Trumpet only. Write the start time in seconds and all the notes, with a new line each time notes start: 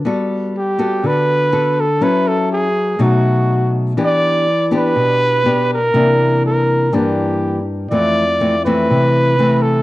0.57 G4
1.06 B4
1.80 A4
2.03 B4
2.27 A4
2.52 G#4
3.02 F#4
4.04 D5
4.76 B4
5.73 A#4
6.46 A#4
6.94 G4
7.90 D5
8.65 B4
9.62 A4